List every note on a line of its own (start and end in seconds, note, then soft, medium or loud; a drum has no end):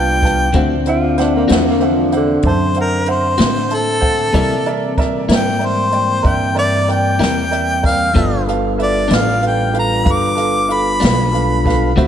0.00 0.52 C2 medium
0.00 0.51 G3 medium
0.00 0.51 B3 medium
0.00 0.51 D4 medium
0.00 0.50 F4 medium
0.00 0.14 B4 soft
0.00 0.15 F5 soft
0.00 0.55 G5 medium
0.00 0.16 A5 medium
0.23 0.46 B4 soft
0.23 0.47 F5 soft
0.23 0.47 A5 soft
0.23 kick medium
0.23 snare soft
0.23 closed hi-hat medium
0.53 1.47 D2 medium
0.53 0.73 D3 medium
0.53 4.32 D3 medium
0.53 0.73 A3 medium
0.53 0.74 C4 medium
0.53 4.32 C4 medium
0.53 4.32 D4 medium
0.53 0.74 F#4 medium
0.53 0.78 C5 medium
0.53 0.78 E5 medium
0.53 0.79 F#5 medium
0.53 kick loud
0.53 closed hi-hat medium
0.86 1.21 F4 medium
0.86 1.10 C5 medium
0.86 1.10 E5 medium
0.86 1.11 F#5 medium
0.86 closed hi-hat soft
1.18 1.34 D4 medium
1.18 1.41 C5 medium
1.18 1.42 E5 medium
1.18 1.42 F#5 medium
1.18 snare soft
1.18 closed hi-hat medium
1.36 1.49 A#3 medium
1.48 2.42 E2 medium
1.48 1.68 D3 medium
1.48 1.68 A3 soft
1.48 1.68 C4 medium
1.48 1.68 F#4 medium
1.48 1.73 C5 medium
1.48 1.74 E5 medium
1.48 snare loud
1.48 closed hi-hat medium
1.53 1.66 F3 medium
1.53 1.75 F#5 medium
1.70 1.87 A#3 medium
1.80 2.04 C5 medium
1.80 2.05 E5 medium
1.80 2.05 F#5 medium
1.80 closed hi-hat soft
1.85 2.14 F3 medium
2.12 2.36 C5 medium
2.12 2.37 E5 soft
2.12 2.37 F#5 medium
2.12 closed hi-hat medium
2.17 2.45 D3 medium
2.42 3.36 F#2 medium
2.42 2.69 C5 soft
2.42 2.69 E5 soft
2.42 kick medium
2.42 closed hi-hat medium
2.46 2.76 C5 medium
2.46 2.69 A5 medium
2.74 3.00 C5 medium
2.74 3.00 E5 soft
2.74 3.01 F#5 medium
2.74 closed hi-hat soft
2.81 3.09 A#4 medium
3.06 3.31 C5 medium
3.06 3.32 E5 soft
3.06 3.32 F#5 medium
3.06 closed hi-hat medium
3.10 3.76 C5 medium
3.37 4.32 A2 medium
3.37 3.59 D3 soft
3.37 3.58 A3 soft
3.37 3.58 C4 medium
3.37 3.58 F#4 medium
3.37 3.62 C5 soft
3.37 3.63 E5 soft
3.37 3.63 F#5 soft
3.37 snare medium
3.37 closed hi-hat medium
3.69 3.94 C5 soft
3.69 3.95 E5 soft
3.69 3.95 A5 soft
3.69 closed hi-hat medium
3.74 4.96 A4 medium
4.01 4.25 C5 medium
4.01 4.26 E5 soft
4.01 4.26 F#5 medium
4.01 kick medium
4.01 closed hi-hat medium
4.33 4.53 C3 medium
4.33 5.27 C3 medium
4.33 8.12 E3 medium
4.33 4.53 G3 medium
4.33 8.11 G3 medium
4.33 8.12 A#3 medium
4.33 4.54 A#3 medium
4.33 8.11 C4 medium
4.33 4.54 E4 medium
4.33 4.58 A#4 medium
4.33 4.58 D5 medium
4.33 4.59 E5 medium
4.33 kick loud
4.33 closed hi-hat medium
4.66 4.90 A#4 medium
4.66 4.90 D5 medium
4.66 4.91 E5 medium
4.66 closed hi-hat medium
4.98 5.22 A#4 medium
4.98 5.22 D5 medium
4.98 5.22 E5 medium
4.98 kick medium
4.98 snare soft
4.98 closed hi-hat medium
5.29 6.22 G#2 medium
5.29 5.49 C3 soft
5.29 5.49 G3 medium
5.29 5.49 A#3 medium
5.29 5.48 E4 medium
5.29 5.54 A#4 medium
5.29 5.54 D5 medium
5.29 5.55 E5 medium
5.29 snare loud
5.29 closed hi-hat medium
5.34 5.67 G5 medium
5.59 5.84 A#4 soft
5.59 5.85 D5 soft
5.59 5.85 E5 soft
5.59 closed hi-hat soft
5.66 6.29 C5 medium
5.92 6.16 A#4 soft
5.92 6.17 D5 soft
5.92 6.17 G5 medium
5.92 closed hi-hat medium
6.23 7.17 G2 medium
6.23 6.48 A#4 medium
6.23 6.48 D5 soft
6.23 6.49 E5 medium
6.23 kick medium
6.23 closed hi-hat medium
6.28 6.57 G5 medium
6.55 6.79 A#4 medium
6.55 6.80 D5 soft
6.55 6.88 D5 medium
6.55 6.81 E5 medium
6.55 closed hi-hat soft
6.88 7.12 A#4 soft
6.88 7.12 D5 soft
6.88 7.13 G5 medium
6.88 7.82 G5 medium
6.88 closed hi-hat medium
7.19 8.12 E2 medium
7.19 7.40 C3 soft
7.19 7.40 G3 medium
7.19 7.39 A#3 medium
7.19 7.39 E4 medium
7.19 7.44 A#4 soft
7.19 7.44 D5 soft
7.19 7.45 G5 soft
7.19 closed hi-hat medium
7.23 snare medium
7.51 7.75 A#4 soft
7.51 7.76 D5 soft
7.51 7.76 E5 medium
7.51 closed hi-hat medium
7.83 8.07 A#4 soft
7.83 8.07 D5 soft
7.83 8.46 F5 medium
7.83 8.08 G5 medium
7.83 kick medium
7.83 closed hi-hat medium
7.87 snare soft
8.14 9.08 G1 medium
8.14 8.34 G2 medium
8.14 8.34 F3 medium
8.14 11.94 G3 medium
8.14 8.34 B3 medium
8.14 11.93 B3 medium
8.14 8.35 D4 medium
8.14 11.94 D4 medium
8.14 11.94 F4 medium
8.14 8.39 A4 medium
8.14 8.39 B4 medium
8.14 8.40 F5 medium
8.14 kick loud
8.14 closed hi-hat medium
8.47 8.71 A4 medium
8.47 8.71 B4 soft
8.47 8.72 F5 medium
8.47 closed hi-hat medium
8.78 9.02 A4 medium
8.78 9.03 B4 soft
8.78 9.03 E5 medium
8.78 closed hi-hat medium
8.82 9.16 D5 medium
9.08 10.03 A1 medium
9.08 9.29 G2 soft
9.08 9.29 F3 soft
9.08 9.29 B3 medium
9.08 9.28 D4 medium
9.08 9.34 A4 medium
9.08 9.35 B4 soft
9.08 9.35 D5 medium
9.08 closed hi-hat medium
9.13 9.43 F5 medium
9.13 snare loud
9.41 9.65 A4 soft
9.41 9.66 B4 soft
9.41 9.66 F5 medium
9.41 closed hi-hat medium
9.47 9.75 G5 medium
9.73 9.97 A4 soft
9.73 9.98 B4 soft
9.73 9.98 F5 medium
9.73 closed hi-hat medium
9.79 10.13 A#5 medium
10.04 10.98 G1 medium
10.04 10.29 A4 medium
10.04 10.29 B4 medium
10.04 10.29 F5 medium
10.04 kick medium
10.04 closed hi-hat medium
10.12 10.75 D6 medium
10.35 10.60 A4 medium
10.35 10.61 B4 soft
10.35 10.61 F5 medium
10.35 closed hi-hat medium
10.67 10.92 A4 soft
10.67 10.93 B4 soft
10.67 10.93 F5 medium
10.67 closed hi-hat medium
10.73 11.95 B5 loud
11.00 11.94 B1 medium
11.00 11.21 G2 medium
11.00 11.21 F3 soft
11.00 11.20 B3 medium
11.00 11.20 D4 medium
11.00 11.24 A4 soft
11.00 11.25 B4 soft
11.00 11.25 F5 soft
11.00 closed hi-hat medium
11.05 snare medium
11.32 11.56 A4 soft
11.32 11.57 B4 soft
11.32 11.57 F5 medium
11.32 closed hi-hat medium
11.65 11.88 A4 medium
11.65 11.89 B4 medium
11.65 11.90 F5 medium
11.65 kick medium
11.65 closed hi-hat medium
11.69 snare soft
11.96 12.07 D2 medium
11.96 12.07 D3 medium
11.96 12.07 A3 medium
11.96 12.07 A#3 medium
11.96 12.07 C4 medium
11.96 12.07 C#4 medium
11.96 12.07 D#4 medium
11.96 12.07 F#4 medium
11.96 12.07 G4 medium
11.96 12.07 C5 medium
11.96 12.07 E5 medium
11.96 kick loud
11.96 closed hi-hat medium